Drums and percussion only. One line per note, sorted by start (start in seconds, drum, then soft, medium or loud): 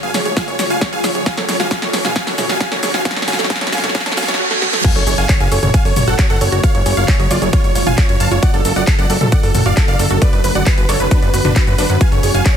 0.03 closed hi-hat soft
0.14 snare medium
0.14 open hi-hat loud
0.14 shaker medium
0.25 closed hi-hat soft
0.25 shaker soft
0.37 kick loud
0.37 snare medium
0.37 closed hi-hat medium
0.37 shaker soft
0.48 closed hi-hat soft
0.48 shaker soft
0.59 snare medium
0.59 open hi-hat loud
0.59 shaker medium
0.70 closed hi-hat soft
0.70 shaker soft
0.81 kick loud
0.81 snare medium
0.81 closed hi-hat medium
0.81 shaker soft
0.93 closed hi-hat soft
1.04 snare medium
1.04 open hi-hat loud
1.04 shaker medium
1.15 closed hi-hat soft
1.15 shaker soft
1.26 kick loud
1.26 snare medium
1.26 closed hi-hat medium
1.26 shaker soft
1.37 snare medium
1.37 closed hi-hat soft
1.49 snare loud
1.49 open hi-hat loud
1.49 shaker medium
1.60 snare medium
1.60 closed hi-hat soft
1.60 shaker soft
1.71 kick loud
1.71 snare loud
1.71 closed hi-hat medium
1.71 shaker soft
1.82 snare medium
1.82 closed hi-hat soft
1.93 snare medium
1.93 open hi-hat loud
1.93 shaker medium
2.05 snare medium
2.05 closed hi-hat soft
2.05 mid tom medium
2.05 shaker soft
2.16 kick loud
2.16 snare medium
2.16 closed hi-hat medium
2.16 shaker soft
2.27 snare medium
2.27 open hi-hat medium
2.27 shaker soft
2.38 snare loud
2.38 open hi-hat loud
2.38 mid tom medium
2.38 shaker medium
2.49 snare medium
2.49 closed hi-hat soft
2.49 shaker soft
2.61 kick loud
2.61 snare loud
2.61 closed hi-hat medium
2.61 shaker soft
2.72 snare medium
2.72 closed hi-hat soft
2.83 snare loud
2.83 open hi-hat loud
2.83 shaker medium
2.94 snare medium
2.94 closed hi-hat soft
2.94 shaker soft
3.05 kick loud
3.05 snare loud
3.05 closed hi-hat medium
3.05 shaker soft
3.11 snare loud
3.16 snare medium
3.16 closed hi-hat soft
3.22 snare medium
3.28 snare loud
3.28 open hi-hat loud
3.28 mid tom medium
3.28 shaker medium
3.33 snare medium
3.39 snare medium
3.39 closed hi-hat soft
3.39 shaker soft
3.44 snare medium
3.50 kick loud
3.50 snare loud
3.50 closed hi-hat medium
3.50 shaker soft
3.56 snare medium
3.61 snare loud
3.61 closed hi-hat soft
3.67 snare loud
3.72 kick medium
3.72 snare loud
3.72 open hi-hat loud
3.72 shaker medium
3.78 snare medium
3.84 snare loud
3.84 closed hi-hat soft
3.84 mid tom medium
3.84 shaker soft
3.89 snare loud
3.95 kick loud
3.95 snare loud
3.95 closed hi-hat medium
3.95 shaker soft
4.00 snare loud
4.06 snare loud
4.06 closed hi-hat soft
4.06 shaker soft
4.12 snare medium
4.17 snare loud
4.17 open hi-hat loud
4.17 shaker medium
4.23 snare loud
4.28 snare loud
4.28 closed hi-hat soft
4.28 shaker soft
4.34 snare medium
4.51 snare medium
4.62 snare medium
4.73 snare medium
4.84 kick loud
4.84 closed hi-hat loud
4.84 crash loud
4.84 ride medium
4.84 shaker soft
4.96 closed hi-hat soft
4.96 shaker soft
5.07 open hi-hat loud
5.07 shaker medium
5.18 closed hi-hat soft
5.18 shaker soft
5.29 kick loud
5.29 clap loud
5.29 closed hi-hat loud
5.29 ride medium
5.29 shaker soft
5.40 closed hi-hat soft
5.40 shaker soft
5.52 open hi-hat loud
5.52 shaker medium
5.63 closed hi-hat soft
5.63 mid tom medium
5.63 shaker soft
5.74 kick loud
5.74 closed hi-hat medium
5.74 ride medium
5.74 shaker soft
5.85 open hi-hat medium
5.85 shaker soft
5.96 open hi-hat loud
5.96 mid tom medium
5.96 shaker medium
6.08 closed hi-hat soft
6.08 shaker soft
6.19 kick loud
6.19 clap loud
6.19 closed hi-hat loud
6.19 ride medium
6.19 shaker soft
6.30 closed hi-hat soft
6.30 shaker soft
6.41 open hi-hat loud
6.41 shaker medium
6.52 closed hi-hat soft
6.52 shaker soft
6.64 kick loud
6.64 closed hi-hat loud
6.64 ride medium
6.64 shaker soft
6.75 closed hi-hat soft
6.75 shaker soft
6.86 open hi-hat loud
6.86 shaker medium
6.97 closed hi-hat soft
6.97 shaker soft
7.08 kick loud
7.08 clap loud
7.08 closed hi-hat loud
7.08 ride medium
7.08 shaker soft
7.20 closed hi-hat soft
7.20 shaker soft
7.31 open hi-hat loud
7.31 shaker medium
7.42 closed hi-hat soft
7.42 shaker soft
7.53 kick loud
7.53 closed hi-hat loud
7.53 ride medium
7.53 shaker soft
7.64 closed hi-hat soft
7.64 shaker soft
7.75 open hi-hat loud
7.75 shaker medium
7.87 closed hi-hat soft
7.87 mid tom medium
7.87 shaker soft
7.98 kick loud
7.98 clap loud
7.98 closed hi-hat loud
7.98 ride medium
7.98 shaker soft
8.09 closed hi-hat soft
8.09 shaker soft
8.20 open hi-hat loud
8.20 shaker medium
8.31 closed hi-hat soft
8.31 shaker soft
8.43 kick loud
8.43 closed hi-hat medium
8.43 ride medium
8.43 shaker soft
8.54 closed hi-hat soft
8.54 shaker soft
8.65 open hi-hat loud
8.65 shaker medium
8.76 closed hi-hat soft
8.76 shaker soft
8.87 kick loud
8.87 clap loud
8.87 closed hi-hat medium
8.87 ride medium
8.87 shaker soft
8.99 closed hi-hat soft
8.99 shaker soft
9.10 open hi-hat loud
9.10 shaker medium
9.21 closed hi-hat soft
9.21 mid tom medium
9.21 shaker soft
9.32 kick loud
9.32 closed hi-hat medium
9.32 ride medium
9.32 shaker soft
9.43 open hi-hat medium
9.43 shaker soft
9.55 open hi-hat loud
9.55 mid tom medium
9.55 shaker medium
9.66 closed hi-hat soft
9.66 shaker soft
9.77 kick loud
9.77 clap loud
9.77 closed hi-hat medium
9.77 ride medium
9.77 shaker soft
9.88 closed hi-hat soft
9.88 shaker soft
9.99 open hi-hat loud
9.99 shaker medium
10.11 closed hi-hat soft
10.11 shaker soft
10.22 kick loud
10.22 closed hi-hat medium
10.22 ride medium
10.22 shaker soft
10.33 closed hi-hat soft
10.33 shaker soft
10.44 open hi-hat loud
10.44 shaker medium
10.55 closed hi-hat soft
10.55 shaker soft
10.66 kick loud
10.66 clap loud
10.66 closed hi-hat medium
10.66 ride medium
10.66 shaker soft
10.78 closed hi-hat soft
10.78 shaker soft
10.89 open hi-hat loud
10.89 shaker medium
11.00 closed hi-hat soft
11.00 shaker soft
11.11 kick loud
11.11 closed hi-hat medium
11.11 ride medium
11.11 shaker soft
11.22 closed hi-hat soft
11.22 shaker soft
11.34 open hi-hat loud
11.34 shaker medium
11.45 closed hi-hat soft
11.45 mid tom medium
11.45 shaker soft
11.56 kick loud
11.56 clap loud
11.56 closed hi-hat medium
11.56 ride medium
11.56 shaker soft
11.67 closed hi-hat soft
11.67 shaker soft
11.78 open hi-hat loud
11.78 shaker medium
11.90 closed hi-hat soft
11.90 shaker soft
12.01 kick loud
12.01 closed hi-hat medium
12.01 ride medium
12.01 shaker soft
12.12 closed hi-hat soft
12.12 shaker soft
12.23 open hi-hat loud
12.23 shaker medium
12.34 closed hi-hat soft
12.34 shaker soft
12.46 kick loud
12.46 clap loud
12.46 closed hi-hat medium
12.46 ride medium
12.46 shaker soft